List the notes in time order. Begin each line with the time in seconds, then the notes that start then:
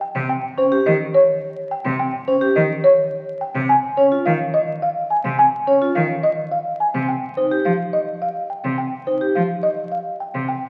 0.01 G5
0.15 C3 C4
0.29 G5
0.58 C#4 C5
0.72 G4
0.86 D#3 D#5
1.14 C#5
1.71 G5
1.85 C3 C4
1.99 G5
2.28 C#4 C5
2.41 G4
2.56 D#3 D#5
2.84 C#5
3.41 G5
3.55 C3 C4
3.69 G#5
3.97 C#4 C#5
4.12 F4
4.26 D#3 F5
4.54 D#5
4.82 F5
5.10 G#5
5.25 C3 C4
5.39 G#5
5.67 C#4 C#5
5.82 F4
5.95 D#3 F5
6.23 D#5
6.51 F5
6.80 G#5
6.95 C3 C4
7.09 G5
7.37 D#4 C5
7.51 G4
7.65 F3 F5
7.93 D#5
8.22 F5
8.50 G5
8.65 C3 C4
8.78 G5
9.07 D#4 C5
9.21 G4
9.35 F3 F5
9.63 D#5
9.92 F5
10.20 G5
10.35 C3 C4
10.48 G5